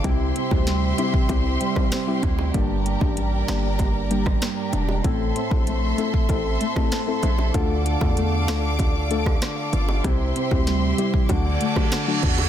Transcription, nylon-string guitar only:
X:1
M:4/4
L:1/8
Q:1/4=96
K:Gdor
V:1 name="Nylon-string guitar"
[C,E] C G, E C G, C E | [G,,D] B, G, D B, G, B, D | [A,,E] C A, E C A, C E | [D,F] D A, F D A, D F |
[C,E] C G, E D, A, D ^F |]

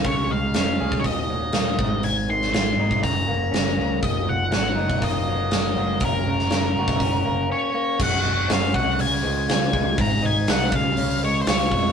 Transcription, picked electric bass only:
X:1
M:4/4
L:1/8
Q:1/4=121
K:Gblyd
V:1 name="Picked electric bass" clef=bass
D,, D,, F,,, D,, E,,,2 E,,, A,,, | A,,, A,,, A,,, A,,, G,,, G,,, G,,, D,, | G,,, G,,, A,,, G,,, G,,,2 G,,, G,,, | G,,, G,,, G,,, G,,, G,,, G,,, z2 |
G,,, G,,, G,,, C,, D,, D,, D,, D,, | A,,, A,,, C,, D,, D,,2 D,, F,, |]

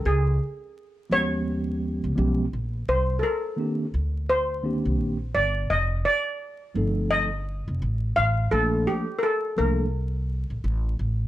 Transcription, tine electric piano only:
X:1
M:4/4
L:1/8
Q:"Swing 16ths" 1/4=85
K:Bb
V:1 name="Tine electric piano"
z3 [F,_A,_C_DG]3 [F,A,CDG] z | z2 [E,B,CDG] z2 [E,B,CDG] z2 | z3 [F,A,CEA] z4 | [F,A,B,DA] z2 [F,A,B,DA] z4 |]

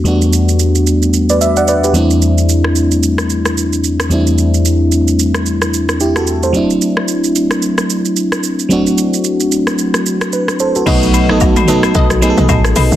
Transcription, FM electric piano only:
X:1
M:4/4
L:1/16
Q:"Swing 16ths" 1/4=111
K:Clyd
V:1 name="FM electric piano"
z8 z [Bd] e [df] [Bd] [GB]2 z | z16 | z12 [EG] [FA]2 [Ac]- | [Ac] z12 z3 |
z12 B2 [Ac] [FA]- | [FA] z12 z3 |]
V:2 name="FM electric piano"
[E,,G,A,B,DF]12- [E,,G,A,B,DF]2 [E,,G,A,CDE]2- | [E,,G,A,CDE]12- [E,,G,A,CDE]2 [E,,G,A,CDE]2- | [E,,G,A,CDE]12- [E,,G,A,CDE]2 z2 | [F,A,CDE]16 |
[F,A,CDF]16 | [F,A,B,^DF]2 z [F,A,B,DA]2 z [F,A,B,DA]3 z [F,A,B,D^GA]4- [F,A,B,DGA] z |]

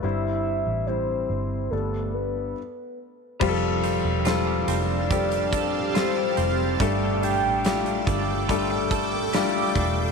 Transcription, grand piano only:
X:1
M:4/4
L:1/8
Q:1/4=71
K:Flyd
V:1 name="Grand piano"
[G,CEc]2 [G,CEc]2 [G,B,DA]2 z2 | [G,CFGA]2 [G,CFA]2 [G,CFA]2 [G,CFA]2 | [G,A,DA]2 [G,A,DF]2 [G,A,DA]2 [G,A,DF]2 |]
V:2 name="Grand piano" clef=bass
G,,3 z G,,2 z2 | z8 | G,,3 z4 z |]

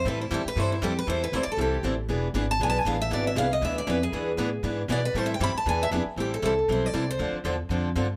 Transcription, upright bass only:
X:1
M:4/4
L:1/8
Q:"Swing" 1/4=235
K:Am
V:1 name="Upright bass" clef=bass
A,,2 ^G,, z =G,,2 F,,2 | E,,2 D,, z C,,2 A,,,2 | E,,,2 ^G,,,2 B,,,2 A,,,2 | ^G,,,2 C,,2 D,,2 F,,2 |
E,,2 A,,2 ^G,,2 B,,2 | A,,2 G,, z E,,2 F,, z | A,,,2 C,,2 B,,,2 C,,2 | D,, z E,,2 F,,2 G,,2 |]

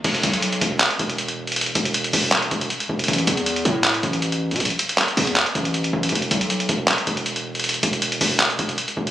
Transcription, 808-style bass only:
X:1
M:4/4
L:1/16
Q:1/4=158
K:Ador
V:1 name="808-style bass" clef=bass
E,,,2 B,,,4 E,,,2 z2 E,,,6- | E,,,2 E,,,4 E,,,4 E,,,2 z2 E,,,2 | A,,,2 E,,4 A,,4 A,,,4- A,,, C, | A,,, z4 z E,,2 z2 A,,,4 A,,,2 |
E,,,2 B,,,4 E,,,2 z2 E,,,6- | E,,,2 E,,,4 E,,,4 E,,,2 z2 E,,,2 |]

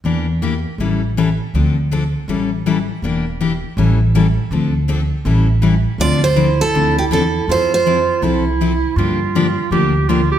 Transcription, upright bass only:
X:1
M:4/4
L:1/8
Q:"Swing" 1/4=162
K:Aphr
V:1 name="Upright bass" clef=bass
E,,4 A,,,4 | D,,4 A,,,4 | E,,,4 A,,,4 | D,,4 A,,,4 |
[K:Dm] D,,4 D,,2 E,,2 | F,,4 C,,4 | G,,4 D,,4 |]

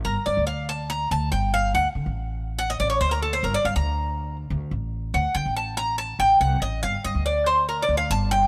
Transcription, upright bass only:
X:1
M:4/4
L:1/16
Q:1/4=141
K:Gm
V:1 name="Upright bass" clef=bass
G,,, z G,, D,,6- D,, D,,2 G,,,4 | D,, z D, A,,,6- A,,, A,,,2 D,,4 | G,,, z G,, D,,6- D,, D,,2 A,,,4 | D,, z D, A,,,6- A,,, A,,,2 C,,2 A,,,2 |
G,,, z G,, D,,6- D,, D,,2 G,,,4 |]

